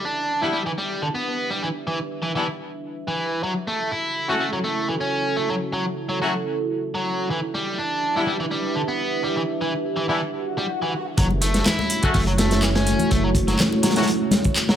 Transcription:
Already playing: D4 E4 G4 B4 E5
0.05 D4
0.42 G3 B3 D4 E4
0.53 G3
0.66 E3
0.78 G3
1.02 D3
1.15 B3
1.50 G3
1.63 E3
1.87 E3
2.22 E3
2.35 E3 G3 B3 D4 E4
3.08 E3
3.43 F#3 C#4 E4 F#4 A4
3.68 A3
3.92 E4
4.29 A3 C#4 E4 F#4
4.40 A3
4.53 F#3
4.64 A3
4.88 E3
5.01 C#4
5.36 A3
5.49 F#3
5.73 F#3
6.09 F#3
6.22 F#3 A3 C#4 E4 F#4
6.95 F#3
7.30 E3 D4 G4 B4 E5
7.54 G3
7.78 D4
8.16 G3 B3 D4 E4
8.27 G3
8.40 E3
8.51 G3
8.75 D3
8.88 B3
9.24 G3
9.37 E3
9.61 E3
9.96 E3
10.09 E3 G3 B3 D4 E4
10.21 swell
10.58 G3
10.82 E3
11.17 F#1 F#3 A3 C#4 E4 F#4 C#5, kick, closed hi-hat
11.31 muted conga
11.42 A3, closed hi-hat
11.54 snare, closed hi-hat
11.65 E4, snare, clap, closed hi-hat, low conga
11.79 snare, muted conga, high conga
11.90 closed hi-hat
12.03 A3 C#4 E4 F#4, kick, closed hi-hat
12.14 F#1 A3, kick, closed hi-hat, open hi-hat
12.27 F#3, closed hi-hat
12.38 A3, snare, closed hi-hat
12.51 snare, closed hi-hat
12.62 E3, snare, clap, closed hi-hat
12.75 C#4, snare, closed hi-hat
12.87 snare, closed hi-hat
12.99 closed hi-hat, low conga
13.11 F#1 A3, kick, closed hi-hat
13.24 F#3
13.35 kick, closed hi-hat
13.48 F#3, snare, closed hi-hat
13.59 snare, clap, closed hi-hat, low conga
13.72 muted conga
13.83 F#3, snare, closed hi-hat
13.90 snare, closed hi-hat
13.96 F#3 A3 C#4 E4 F#4, snare, closed hi-hat
14.02 snare, closed hi-hat
14.07 closed hi-hat
14.31 snare, closed hi-hat, high conga
14.44 kick, closed hi-hat
14.56 clap, closed hi-hat
14.69 F#3, snare

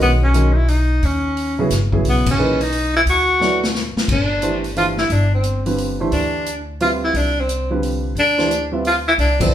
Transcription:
Already playing: D#3 G#3 C#4 F#4 A#4
0.00 B1 B3, open hi-hat
0.23 C#4
0.34 D#3 G#3 C#4 F#4 A#4, closed hi-hat
0.53 D#4 E4
0.68 D#4, open hi-hat
1.02 D#2 C#4, open hi-hat
1.37 open hi-hat
1.59 C#3 F#3 B3 E4 G#4
1.70 G1, snare, closed hi-hat
1.92 C#3 F#3 B3 E4 G#4, kick
2.04 B1, open hi-hat
2.09 B3
2.26 kick, crash
2.31 C#4
2.38 E3 A#3 D#4 G#4 B4
2.61 D#4, open hi-hat
2.72 open hi-hat
2.96 E4
3.06 D2 F#4, open hi-hat
3.40 F#3 B3 E4 A4 D5, snare
3.63 snare
3.75 snare
3.96 muted upright bass stroke, snare
4.08 G1 D4, kick, crash
4.42 E3 A3 D4 G4 C5, closed hi-hat
4.64 open hi-hat
4.76 E3 A3 D4 F4 G4 C5, open hi-hat
4.97 E4, snare
5.10 G1 D4, open hi-hat
5.34 C4
5.44 closed hi-hat
5.66 D3 G3 C4 F4 B4, open hi-hat
5.78 open hi-hat
6.00 E3 A3 D4 G4 C5
6.12 D2 D4, open hi-hat
6.46 closed hi-hat
6.80 G3 C4 F4 B4 E5, open hi-hat
7.04 E4
7.14 C2 D4, open hi-hat
7.40 C4
7.49 closed hi-hat
7.70 D3 G3 C4 F4 B4
7.83 open hi-hat
8.15 D2 D4, open hi-hat
8.38 E3 A3 D4 G4 C5, snare
8.51 closed hi-hat
8.72 G3 C4 F4 B4 E5
8.85 F4, open hi-hat
9.08 E4
9.18 C2 D4, open hi-hat
9.40 F3 B3 C4 E4 A4 D5, kick, crash

